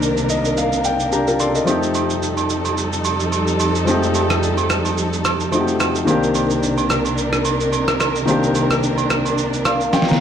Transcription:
Already playing: C2 C3 D#3 A#3 C4 D4 A#4
0.02 shaker
0.17 shaker
0.29 D#5, shaker
0.45 shaker
0.57 F5, shaker
0.73 shaker
0.84 G5, shaker
1.00 shaker
1.12 D4 G4 A#5, shaker
1.27 F4 A#4, shaker
1.40 A4 D5 C6, shaker
1.55 A#4 D#5, shaker
1.65 F2 F3 G3 A3 C4 D#4 A4, high agogo, shaker
1.70 G4
1.83 shaker
1.94 high agogo, shaker
2.10 shaker
2.23 shaker
2.37 high agogo, shaker
2.50 shaker
2.65 high agogo, shaker
2.78 shaker
2.93 shaker
3.04 high agogo, shaker
3.20 shaker
3.32 high agogo, shaker
3.48 shaker
3.60 high agogo, shaker
3.75 shaker
3.85 F3 G#3 C4 D#4, high agogo, shaker
3.90 A3 G4
4.03 shaker
4.14 high agogo, shaker
4.30 cross-stick, shaker
4.43 shaker
4.57 high agogo, shaker
4.70 cross-stick, shaker
4.85 high agogo, shaker
4.98 shaker
5.13 shaker
5.25 cross-stick, high agogo, shaker
5.40 shaker
5.52 F3 A3 C4 D#4 F#4, high agogo, shaker
5.61 G4
5.68 shaker
5.80 cross-stick, high agogo, shaker
5.95 shaker
6.05 C2 C3 D#3 A#3 C4 D4 A#4, high agogo, shaker
6.10 G4
6.23 shaker
6.35 high agogo, shaker
6.50 shaker
6.63 shaker
6.78 high agogo, shaker
6.90 cross-stick, shaker
7.05 high agogo, shaker
7.18 shaker
7.33 cross-stick, shaker
7.45 high agogo, shaker
7.60 shaker
7.73 high agogo, shaker
7.88 cross-stick, shaker
8.00 cross-stick, high agogo, shaker
8.15 shaker
8.26 D#3 A#3 C4 D4, high agogo, shaker
8.31 G4
8.43 shaker
8.55 high agogo, shaker
8.71 cross-stick, shaker
8.83 shaker
8.98 high agogo, shaker
9.10 cross-stick, shaker
9.25 high agogo, shaker
9.38 shaker
9.53 shaker
9.65 F5, cross-stick, high agogo, shaker
9.81 shaker
9.93 G5, snare, high agogo, shaker
10.02 snare
10.08 A#5, snare, shaker

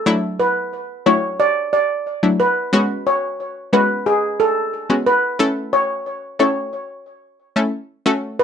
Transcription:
0.06 F#3 A3 D4 E4
0.40 B4
1.06 F#3 A3 D4 E4 C#5
1.40 D5
1.73 D5
2.23 F#3 A3 D4 E4
2.40 B4
2.73 G#3 B3 C#4 F#4
3.07 C#5
3.73 G#3 B3 C#4 F#4 B4
4.06 G#4
4.40 A4
4.90 G#3 B3 C#4 F#4
5.06 B4
5.39 A3 C#4 E4 A4
5.73 C#5
6.39 A3 C#4 E4 A4 C#5
7.56 A3 C#4 E4 A4
8.06 A3 C#4 F#4 A4
8.39 B4

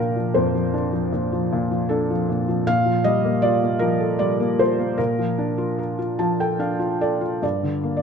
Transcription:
Already playing: A#2 F3 D4 A#4 D5 F5 G5
0.16 F3
0.34 F2 C5
0.54 F3
0.74 D4
0.92 F3
1.12 A#2
1.32 F3
1.52 A#2
1.71 F3
1.89 D4 A4
2.10 F3
2.29 A#2
2.48 F3
2.67 A#2 F5
2.85 F3
3.04 G3 D#5
3.24 A#3
3.42 F4 D5
3.63 A#3
3.79 F3 A#4
4.00 A4
4.19 G3 D5
4.40 A#3
4.59 F4 C5
4.79 A#3
4.98 A#2 A#4
5.19 F3
5.38 D4
5.58 F4
5.79 A#4
5.99 F4
6.19 F3 A5
6.40 A4 G5
6.59 D4 F5
6.79 F4
7.01 A4 D5
7.21 F4
7.42 G2 D5
7.63 D3
7.83 A#3
7.97 D5

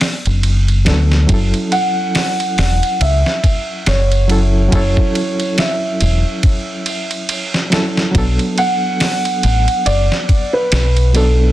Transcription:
Already playing: F#3 B3 D4 A4
0.01 snare, open hi-hat
0.26 F#1, ride
0.43 ride
0.68 ride
0.85 D2 F#3 B3 D4 A4, snare, ride
1.12 snare
1.26 F#1 F#3 C#4, kick, ride
1.31 E4 A4
1.54 ride
1.72 F#5, ride
2.15 snare, open hi-hat
2.40 ride
2.58 E1, snare, open hi-hat
2.83 ride
3.01 C#2 E5, ride
3.26 snare
3.44 kick, ride
3.86 F#1 C#5, snare, ride
4.12 ride
4.28 F#3 C#4 E4 A4, ride
4.68 F#3 C#4, kick, ride
4.73 F#1 E4 A4 C#5
4.97 kick
5.15 ride
5.40 ride
5.58 E5, snare, ride
6.01 E1, ride
6.43 kick, ride
6.86 ride
7.11 ride
7.29 ride
7.54 snare
7.70 F#3 C#4 E4 A4, snare, ride
7.97 snare
8.11 B1 F#3 B3, kick, ride
8.16 D4 A4
8.39 ride
8.58 F#5, ride
9.00 snare, open hi-hat
9.25 ride
9.43 A1, ride
9.68 ride
9.86 F#1 D5, ride
10.12 snare
10.29 kick, ride
10.53 B4
10.72 B1, snare, ride
10.97 ride
11.13 F#3 B3 D4 A4, ride

